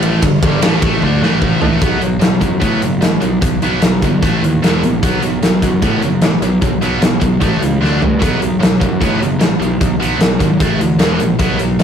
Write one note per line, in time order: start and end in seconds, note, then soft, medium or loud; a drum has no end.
0.00 0.20 A1 loud
0.00 0.23 A2 medium
0.00 0.23 E3 loud
0.00 0.23 A3 loud
0.00 ride medium
0.22 0.41 G1 medium
0.22 0.39 G2 medium
0.22 0.39 D3 medium
0.22 kick medium
0.22 ride medium
0.42 0.61 G1 medium
0.42 0.62 G2 medium
0.42 0.62 D3 medium
0.42 0.63 G3 medium
0.42 kick loud
0.42 ride medium
0.62 0.81 A1 loud
0.62 0.82 A2 medium
0.62 0.82 E3 medium
0.62 0.83 A3 medium
0.62 snare loud
0.62 ride loud
0.81 1.00 A1 medium
0.81 1.02 A2 medium
0.81 1.02 E3 medium
0.81 1.02 A3 loud
0.81 kick loud
0.81 ride medium
1.02 1.21 D2 loud
1.02 1.22 D3 loud
1.02 1.22 A3 loud
1.02 1.23 D4 loud
1.02 kick medium
1.22 1.59 A1 medium
1.22 1.60 A2 medium
1.22 1.61 E3 medium
1.22 1.61 A3 medium
1.22 snare medium
1.42 kick medium
1.61 1.81 A1 loud
1.61 1.80 A2 medium
1.61 1.81 E3 medium
1.61 1.82 A3 loud
1.61 floor tom medium
1.80 2.00 B1 medium
1.80 1.99 B2 medium
1.80 2.00 F#3 medium
1.80 2.01 B3 medium
1.80 kick loud
1.80 closed hi-hat medium
2.00 2.20 B1 medium
2.00 2.18 B2 medium
2.00 2.18 F#3 medium
2.00 closed hi-hat medium
2.19 2.40 B1 medium
2.19 2.39 B2 medium
2.19 2.39 F#3 medium
2.19 snare loud
2.19 closed hi-hat medium
2.41 2.60 F#2 medium
2.41 2.59 B2 medium
2.41 2.60 F#3 medium
2.41 kick medium
2.41 closed hi-hat medium
2.60 2.81 A2 medium
2.60 2.80 B2 medium
2.60 2.81 F#3 medium
2.60 2.81 B3 medium
2.60 kick medium
2.60 closed hi-hat medium
2.81 3.01 F#1 medium
2.81 3.00 B2 medium
2.81 3.00 F#3 medium
2.81 closed hi-hat medium
3.01 3.21 A1 medium
3.01 3.20 B2 medium
3.01 3.20 F#3 medium
3.01 snare loud
3.01 closed hi-hat medium
3.21 3.41 B1 medium
3.21 3.39 B2 medium
3.21 3.40 F#3 medium
3.21 closed hi-hat medium
3.42 3.61 B1 medium
3.42 3.60 B2 medium
3.42 3.60 F#3 medium
3.42 kick loud
3.42 closed hi-hat medium
3.62 3.81 B1 medium
3.62 3.81 B2 medium
3.62 3.81 F#3 medium
3.62 3.82 B3 medium
3.62 closed hi-hat medium
3.82 4.01 B1 medium
3.82 4.00 B2 medium
3.82 4.01 F#3 medium
3.82 snare loud
3.82 closed hi-hat medium
4.02 4.21 G1 medium
4.02 4.21 B2 medium
4.02 4.21 F#3 medium
4.02 kick medium
4.02 closed hi-hat medium
4.23 4.42 A1 medium
4.23 4.41 A2 loud
4.23 4.42 E3 medium
4.23 4.42 A3 loud
4.23 kick loud
4.23 closed hi-hat medium
4.43 4.62 D#2 medium
4.43 4.61 A2 medium
4.43 4.61 E3 medium
4.43 closed hi-hat medium
4.63 4.82 E1 medium
4.63 4.81 E2 medium
4.63 4.82 B2 medium
4.63 4.82 E3 loud
4.63 snare loud
4.63 closed hi-hat medium
4.83 5.02 A#1 medium
4.83 5.00 E2 medium
4.83 5.01 B2 medium
4.83 closed hi-hat medium
5.03 5.22 B1 medium
5.03 5.21 B2 medium
5.03 5.21 F#3 medium
5.03 5.22 B3 loud
5.03 kick loud
5.03 closed hi-hat medium
5.22 5.42 B1 medium
5.22 5.41 B2 medium
5.22 5.41 F#3 medium
5.22 closed hi-hat medium
5.43 5.61 B1 medium
5.43 5.60 B2 medium
5.43 5.61 F#3 medium
5.43 snare loud
5.43 closed hi-hat medium
5.61 5.81 F#2 medium
5.61 5.81 B2 medium
5.61 5.81 F#3 medium
5.61 kick medium
5.61 closed hi-hat medium
5.82 6.01 A2 medium
5.82 6.01 B2 medium
5.82 6.01 F#3 loud
5.82 6.01 B3 loud
5.82 kick medium
5.82 closed hi-hat medium
6.02 6.22 F#1 medium
6.02 6.20 B2 medium
6.02 6.21 F#3 medium
6.02 closed hi-hat medium
6.22 6.41 A1 medium
6.22 6.40 B2 medium
6.22 6.41 F#3 medium
6.22 snare loud
6.22 closed hi-hat medium
6.42 6.61 B1 medium
6.42 6.60 B2 medium
6.42 6.60 F#3 medium
6.42 closed hi-hat medium
6.62 6.80 B1 medium
6.62 6.80 B2 medium
6.62 6.80 F#3 medium
6.62 kick loud
6.62 closed hi-hat medium
6.81 7.01 B1 medium
6.81 7.00 B2 medium
6.81 7.01 F#3 medium
6.81 7.01 B3 medium
6.81 closed hi-hat medium
7.01 7.21 B1 medium
7.01 7.19 B2 medium
7.01 7.19 F#3 medium
7.01 snare loud
7.01 closed hi-hat medium
7.20 7.40 B1 medium
7.20 7.39 B2 medium
7.20 7.39 F#3 medium
7.20 kick medium
7.20 closed hi-hat medium
7.40 7.60 A1 medium
7.40 7.60 A2 medium
7.40 7.60 E3 medium
7.40 7.61 A3 medium
7.40 kick medium
7.40 closed hi-hat medium
7.61 7.80 C#2 medium
7.61 7.80 A2 medium
7.61 7.80 E3 medium
7.61 closed hi-hat medium
7.81 8.01 D2 medium
7.81 8.00 D3 medium
7.81 8.00 A3 medium
7.81 8.01 D4 loud
7.81 snare medium
8.01 8.21 G2 medium
8.01 8.19 D3 medium
8.01 8.19 A3 medium
8.01 floor tom medium
8.20 8.39 B1 medium
8.20 8.39 B2 medium
8.20 8.40 F#3 medium
8.20 8.40 B3 loud
8.20 kick loud
8.20 closed hi-hat medium
8.39 8.59 B1 medium
8.39 8.59 B2 medium
8.39 8.59 F#3 medium
8.39 closed hi-hat medium
8.60 8.80 B1 medium
8.60 8.79 B2 medium
8.60 8.79 F#3 medium
8.60 snare loud
8.60 closed hi-hat medium
8.80 9.00 F#2 medium
8.80 8.99 B2 medium
8.80 8.99 F#3 medium
8.80 kick medium
8.80 closed hi-hat medium
9.01 9.20 A2 loud
9.01 9.19 B2 medium
9.01 9.19 F#3 medium
9.01 9.20 B3 loud
9.01 kick loud
9.01 closed hi-hat medium
9.20 9.41 F#1 medium
9.20 9.38 B2 medium
9.20 9.39 F#3 medium
9.20 closed hi-hat medium
9.40 9.60 A1 medium
9.40 9.58 B2 medium
9.40 9.59 F#3 medium
9.40 snare loud
9.40 closed hi-hat medium
9.60 9.80 B1 medium
9.60 9.78 B2 medium
9.60 9.78 F#3 medium
9.60 closed hi-hat medium
9.81 9.98 B1 medium
9.81 9.99 B2 medium
9.81 9.99 F#3 medium
9.81 kick loud
9.81 closed hi-hat medium
9.99 10.19 B1 medium
9.99 10.19 B2 medium
9.99 10.19 F#3 medium
9.99 10.20 B3 medium
9.99 closed hi-hat medium
10.19 10.39 B1 medium
10.19 10.38 B2 medium
10.19 10.39 F#3 medium
10.19 snare loud
10.19 closed hi-hat medium
10.40 10.59 G#1 medium
10.40 10.58 B2 medium
10.40 10.58 F#3 medium
10.40 kick medium
10.40 closed hi-hat medium
10.60 10.78 A1 medium
10.60 10.79 A2 medium
10.60 10.79 E3 medium
10.60 10.79 A3 loud
10.60 kick loud
10.60 closed hi-hat medium
10.79 10.98 D2 medium
10.79 10.98 A2 medium
10.79 10.98 E3 medium
10.79 closed hi-hat medium
10.99 11.18 E1 medium
10.99 11.18 E2 medium
10.99 11.19 B2 loud
10.99 11.19 E3 medium
10.99 snare loud
10.99 closed hi-hat medium
11.20 11.38 A#1 medium
11.20 11.38 E2 medium
11.20 11.38 B2 medium
11.20 closed hi-hat medium
11.39 11.58 B1 medium
11.39 11.58 B2 medium
11.39 11.58 F#3 medium
11.39 11.59 B3 medium
11.39 kick loud
11.39 closed hi-hat medium
11.59 11.79 B1 medium
11.59 11.77 B2 medium
11.59 11.77 F#3 medium
11.59 closed hi-hat medium
11.79 11.83 B1 medium
11.79 11.83 B2 medium
11.79 11.83 F#3 medium
11.79 snare loud
11.79 closed hi-hat medium